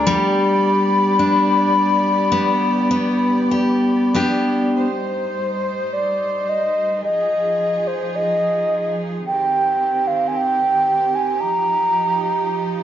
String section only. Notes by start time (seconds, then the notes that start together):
Already playing: D5
0.05 B3 G4
4.74 G3 D#4 C5
7.02 F3 G#4
9.26 D#3 C4 G4
11.39 F3 D#4